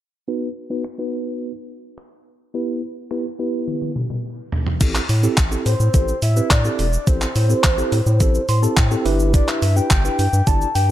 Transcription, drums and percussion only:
0.84 finger snap loud
1.98 finger snap loud
3.11 finger snap loud
3.68 high tom soft
3.82 high tom soft
3.96 mid tom medium
4.10 mid tom medium
4.52 floor tom medium
4.67 floor tom medium
4.81 kick loud
4.81 closed hi-hat medium
4.81 crash loud
4.81 shaker medium
4.95 clap medium
4.95 shaker medium
5.09 open hi-hat medium
5.09 shaker medium
5.23 shaker medium
5.37 kick loud
5.37 clap loud
5.37 closed hi-hat medium
5.37 shaker medium
5.52 shaker medium
5.66 open hi-hat medium
5.66 shaker medium
5.80 shaker medium
5.94 kick loud
5.94 closed hi-hat medium
5.94 shaker medium
6.08 shaker medium
6.22 open hi-hat medium
6.22 shaker medium
6.37 shaker medium
6.51 kick loud
6.51 clap loud
6.51 closed hi-hat medium
6.51 shaker medium
6.65 shaker medium
6.79 open hi-hat medium
6.79 shaker soft
6.93 shaker medium
7.07 kick loud
7.07 closed hi-hat medium
7.07 shaker medium
7.21 clap medium
7.21 shaker medium
7.36 open hi-hat medium
7.36 shaker medium
7.50 shaker medium
7.64 kick loud
7.64 clap loud
7.64 closed hi-hat medium
7.64 shaker medium
7.78 shaker medium
7.92 open hi-hat medium
7.92 shaker medium
8.07 shaker medium
8.20 kick loud
8.20 closed hi-hat medium
8.20 shaker medium
8.35 shaker medium
8.49 open hi-hat medium
8.49 shaker medium
8.63 shaker medium
8.77 kick loud
8.77 clap loud
8.77 closed hi-hat medium
8.77 shaker medium
8.91 shaker soft
9.06 open hi-hat medium
9.06 shaker soft
9.20 shaker medium
9.34 kick loud
9.34 closed hi-hat medium
9.34 shaker medium
9.48 clap medium
9.48 shaker medium
9.62 open hi-hat medium
9.62 shaker medium
9.77 shaker medium
9.90 kick loud
9.90 clap loud
9.90 closed hi-hat medium
9.90 shaker medium
10.05 shaker medium
10.19 open hi-hat medium
10.19 shaker medium
10.33 shaker medium
10.47 kick loud
10.47 closed hi-hat medium
10.47 shaker medium
10.62 shaker medium
10.75 open hi-hat medium
10.75 shaker medium

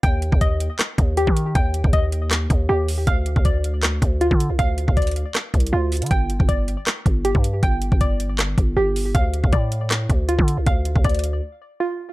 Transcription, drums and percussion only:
0.03 kick loud
0.03 closed hi-hat medium
0.22 closed hi-hat medium
0.32 kick loud
0.41 kick loud
0.41 closed hi-hat medium
0.60 closed hi-hat medium
0.79 cross-stick loud
0.79 clap loud
0.79 closed hi-hat medium
0.98 kick medium
0.98 closed hi-hat medium
1.17 closed hi-hat medium
1.27 kick medium
1.37 closed hi-hat medium
1.55 kick loud
1.55 closed hi-hat medium
1.74 closed hi-hat medium
1.84 kick loud
1.93 kick loud
1.93 closed hi-hat medium
2.12 closed hi-hat medium
2.31 cross-stick loud
2.31 clap loud
2.31 closed hi-hat medium
2.50 kick medium
2.50 closed hi-hat medium
2.88 open hi-hat medium
3.07 kick loud
3.07 closed hi-hat medium
3.26 closed hi-hat medium
3.36 kick loud
3.45 kick loud
3.45 closed hi-hat medium
3.64 closed hi-hat medium
3.83 cross-stick loud
3.83 clap loud
3.83 closed hi-hat loud
4.02 kick medium
4.02 closed hi-hat medium
4.21 closed hi-hat medium
4.31 kick loud
4.40 closed hi-hat medium
4.59 kick loud
4.59 closed hi-hat medium
4.78 closed hi-hat medium
4.88 kick loud
4.97 kick loud
4.97 closed hi-hat medium
5.02 closed hi-hat medium
5.07 closed hi-hat medium
5.11 closed hi-hat medium
5.16 closed hi-hat medium
5.35 cross-stick loud
5.35 clap loud
5.35 closed hi-hat loud
5.54 kick medium
5.54 closed hi-hat soft
5.60 closed hi-hat medium
5.67 closed hi-hat medium
5.92 closed hi-hat soft
5.92 open hi-hat medium
5.97 closed hi-hat medium
6.02 closed hi-hat medium
6.06 closed hi-hat medium
6.11 kick loud
6.11 closed hi-hat medium
6.30 closed hi-hat medium
6.40 kick loud
6.49 kick loud
6.49 closed hi-hat medium
6.68 closed hi-hat medium
6.87 cross-stick loud
6.87 clap loud
6.87 closed hi-hat medium
7.06 kick medium
7.06 closed hi-hat medium
7.25 closed hi-hat medium
7.35 kick loud
7.44 closed hi-hat medium
7.63 kick loud
7.63 closed hi-hat medium
7.82 closed hi-hat medium
7.92 kick loud
8.01 kick loud
8.01 closed hi-hat medium
8.20 closed hi-hat medium
8.39 cross-stick loud
8.39 clap loud
8.39 closed hi-hat medium
8.58 kick loud
8.58 closed hi-hat medium
8.96 open hi-hat medium
9.15 kick loud
9.15 closed hi-hat medium
9.34 closed hi-hat medium
9.44 kick loud
9.53 kick loud
9.53 closed hi-hat medium
9.72 closed hi-hat medium
9.91 cross-stick loud
9.91 clap loud
9.91 closed hi-hat medium
10.10 kick medium
10.10 closed hi-hat medium
10.29 closed hi-hat medium
10.39 kick medium
10.48 closed hi-hat medium
10.66 kick loud
10.66 closed hi-hat medium
10.85 closed hi-hat medium
10.96 kick loud
11.04 kick loud
11.04 closed hi-hat medium
11.09 closed hi-hat medium
11.15 closed hi-hat medium
11.19 closed hi-hat medium
11.24 closed hi-hat medium

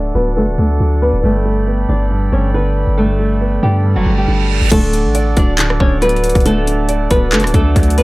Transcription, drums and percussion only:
4.72 kick loud
4.72 closed hi-hat medium
4.72 crash loud
4.93 closed hi-hat medium
5.15 closed hi-hat medium
5.37 kick loud
5.37 closed hi-hat medium
5.59 clap loud
5.59 closed hi-hat medium
5.70 cross-stick loud
5.80 kick loud
6.02 closed hi-hat medium
6.09 closed hi-hat medium
6.16 closed hi-hat medium
6.24 closed hi-hat medium
6.29 closed hi-hat medium
6.35 kick medium
6.35 closed hi-hat medium
6.40 closed hi-hat soft
6.46 closed hi-hat medium
6.67 closed hi-hat medium
6.89 closed hi-hat medium
7.11 kick loud
7.11 closed hi-hat medium
7.32 clap loud
7.32 closed hi-hat soft
7.40 closed hi-hat medium
7.44 cross-stick loud
7.44 closed hi-hat medium
7.54 kick loud
7.54 closed hi-hat medium
7.76 kick medium
7.76 closed hi-hat medium
7.83 closed hi-hat medium
7.90 closed hi-hat medium
7.98 closed hi-hat medium

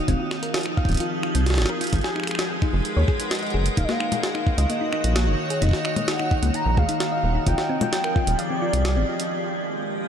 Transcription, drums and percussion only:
0.08 kick loud
0.08 closed hi-hat soft
0.31 finger snap medium
0.31 snare medium
0.43 closed hi-hat medium
0.54 snare loud
0.54 closed hi-hat soft
0.56 closed hi-hat soft
0.59 closed hi-hat soft
0.61 closed hi-hat soft
0.63 finger snap soft
0.63 closed hi-hat soft
0.77 kick loud
0.85 kick medium
0.85 closed hi-hat soft
0.92 kick medium
0.92 closed hi-hat soft
0.94 closed hi-hat soft
0.97 closed hi-hat soft
1.00 closed hi-hat medium
1.23 finger snap medium
1.35 closed hi-hat medium
1.46 snare medium
1.46 closed hi-hat soft
1.50 snare medium
1.54 snare medium
1.58 snare medium
1.62 snare medium
1.66 snare loud
1.81 closed hi-hat medium
1.84 closed hi-hat soft
1.87 closed hi-hat soft
1.90 closed hi-hat soft
1.93 kick loud
1.93 closed hi-hat soft
1.96 closed hi-hat soft
2.01 snare medium
2.01 closed hi-hat soft
2.16 finger snap soft
2.20 finger snap soft
2.24 finger snap soft
2.27 finger snap medium
2.27 closed hi-hat medium
2.31 finger snap medium
2.35 finger snap medium
2.35 snare loud
2.35 closed hi-hat soft
2.62 finger snap soft
2.62 kick loud
2.85 closed hi-hat soft
3.08 kick loud
3.20 closed hi-hat medium
3.31 snare loud
3.31 closed hi-hat soft
3.35 closed hi-hat soft
3.39 closed hi-hat soft
3.43 closed hi-hat soft
3.47 closed hi-hat soft
3.50 closed hi-hat soft
3.66 closed hi-hat medium
3.77 kick loud
3.77 closed hi-hat soft
3.89 snare medium
4.00 finger snap medium
4.12 closed hi-hat medium
4.12 low conga medium
4.23 snare loud
4.23 closed hi-hat soft
4.35 finger snap soft
4.47 kick loud
4.58 closed hi-hat medium
4.70 closed hi-hat soft
4.93 finger snap medium
5.04 closed hi-hat medium
5.16 snare loud
5.16 closed hi-hat soft
5.50 closed hi-hat medium
5.62 kick soft
5.62 closed hi-hat soft
5.64 kick medium
5.67 kick medium
5.69 kick medium
5.71 kick medium
5.71 snare medium
5.85 finger snap medium
5.96 closed hi-hat medium
5.96 low conga medium
6.08 snare loud
6.08 closed hi-hat soft
6.20 finger snap soft
6.31 kick loud
6.43 closed hi-hat medium
6.54 closed hi-hat soft
6.77 kick loud
6.77 low conga medium
6.89 closed hi-hat medium
7.00 snare loud
7.00 closed hi-hat soft
7.47 kick medium
7.47 closed hi-hat soft
7.58 snare medium
7.81 closed hi-hat medium
7.81 low conga medium
7.93 snare loud
7.93 closed hi-hat soft
8.04 finger snap soft
8.16 kick loud
8.27 closed hi-hat medium
8.39 closed hi-hat soft
8.73 closed hi-hat medium
8.85 snare loud
8.85 closed hi-hat medium
9.20 closed hi-hat medium

